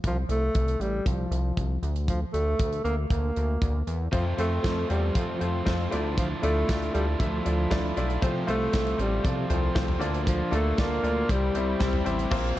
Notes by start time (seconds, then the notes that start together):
0.04 C2 F3, kick, closed hi-hat
0.29 C2 A3, closed hi-hat
0.55 C2, kick, closed hi-hat
0.68 closed hi-hat
0.80 A1 G3, closed hi-hat
1.06 C2 F3, kick, closed hi-hat
1.31 C2, closed hi-hat
1.57 C2, kick, closed hi-hat
1.83 D2, closed hi-hat
1.96 closed hi-hat
2.08 F3, kick, closed hi-hat
2.33 D2 A3, closed hi-hat
2.59 D2, kick, closed hi-hat
2.72 closed hi-hat
2.84 D2 A#3, closed hi-hat
3.10 D2 A#3, kick, closed hi-hat
3.36 D2, closed hi-hat
3.62 D2, kick, closed hi-hat
3.87 E2, closed hi-hat
4.12 F2 C3 F3 A3 C4 F4 C5, kick, closed hi-hat
4.37 F2 F3 A3 C4 F4 C5, closed hi-hat
4.63 F2 F3 A3 C4 F4 C5, kick, snare, closed hi-hat
4.88 E2 F3 G3 A3 C4 F4 C5, closed hi-hat
5.14 F2 C3 F3 A3 C4 F4 C5, kick, closed hi-hat
5.39 F2 F3 A3 C4 F4 C5, closed hi-hat
5.65 F2 F3 A3 C4 F4 C5, kick, snare, closed hi-hat
5.69 F4
5.91 D2 D3 A3 D4 E4 F4 D5, closed hi-hat
6.17 D3 E3 F3 A3 D4 F4, kick, closed hi-hat
6.42 D2 A3 D4 E4 F4 D5, closed hi-hat
6.67 D2 E3 A3 D4 E4 F4 D5, kick, snare, closed hi-hat
6.82 closed hi-hat
6.93 D2 G3 A3 D4 E4 F4 A4, closed hi-hat
7.19 D2 D3 E3 F3 A3 D4 E4 F4 E5, kick, closed hi-hat
7.44 D2 A3 D4 E4 F4 D5, closed hi-hat
7.70 D2 E3 A3 D4 E4 F4 D5, kick, snare, closed hi-hat
7.96 B1 A3 D4 E4 F4 D5, closed hi-hat
8.10 closed hi-hat
8.21 C2 C3 F3 A3 C4 F4 C5, kick, closed hi-hat
8.47 C2 A3 C4 F4 C5, closed hi-hat
8.72 C2 F3 A3 C4 F4 C5, kick, snare, closed hi-hat
8.87 closed hi-hat
8.97 A1 G3 A3 C4 F4 C5, closed hi-hat
9.23 C2 C3 F3 A3 C4 F4 D5, kick, closed hi-hat
9.49 C2 A3 C4 F4 C5, closed hi-hat, floor tom
9.74 C2 F3 A3 C4 F4 C5, kick, snare, closed hi-hat
9.88 floor tom
9.99 D2 D3 A#3 D4 F4 D5, closed hi-hat
10.14 closed hi-hat
10.27 D3 F3 A#3 D4 F4, kick, closed hi-hat
10.51 D2 A3 A#3 D4 F4 A4, closed hi-hat
10.78 D2 F3 A#3 D4 F4 D5, kick, snare, closed hi-hat
11.03 D2 A#3 D4 F4 D5, closed hi-hat
11.28 C2 C3 G3 C4 E4 G4 C5, kick, closed hi-hat
11.55 C2 G3 C4 E4 G4 C5, closed hi-hat
11.79 C2 G3 C4 E4 C5, kick, snare, closed hi-hat
11.83 G4
11.93 floor tom
12.04 A1 G3 C4 E4 G4 C5, closed hi-hat
12.09 C4
12.19 closed hi-hat
12.31 A#1 A#2 F3 A#3 C4 F4 A#4 C5, kick, crash
12.55 A#3 C4 F4